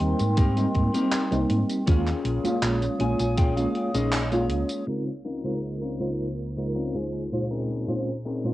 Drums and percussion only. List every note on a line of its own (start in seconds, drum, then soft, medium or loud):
0.00 closed hi-hat medium
0.19 closed hi-hat soft
0.19 tambourine medium
0.37 kick loud
0.37 closed hi-hat medium
0.37 tambourine soft
0.57 closed hi-hat soft
0.57 tambourine soft
0.75 kick medium
0.75 closed hi-hat soft
0.94 closed hi-hat soft
0.94 tambourine medium
1.12 clap loud
1.12 closed hi-hat medium
1.12 tambourine soft
1.32 closed hi-hat soft
1.32 tambourine soft
1.50 closed hi-hat medium
1.70 closed hi-hat soft
1.70 tambourine medium
1.87 kick loud
1.87 closed hi-hat medium
1.87 tambourine soft
2.07 clap soft
2.07 closed hi-hat soft
2.07 tambourine soft
2.25 closed hi-hat medium
2.45 closed hi-hat soft
2.45 tambourine medium
2.63 clap loud
2.63 closed hi-hat loud
2.63 tambourine soft
2.82 closed hi-hat soft
2.82 tambourine soft
3.00 closed hi-hat medium
3.19 closed hi-hat soft
3.19 tambourine medium
3.37 kick loud
3.37 closed hi-hat loud
3.37 tambourine soft
3.57 closed hi-hat soft
3.57 tambourine soft
3.75 closed hi-hat soft
3.95 closed hi-hat soft
3.95 tambourine medium
4.12 clap loud
4.12 closed hi-hat medium
4.12 tambourine soft
4.32 closed hi-hat soft
4.32 tambourine soft
4.50 closed hi-hat medium
4.69 closed hi-hat soft
4.69 tambourine medium
4.87 crash medium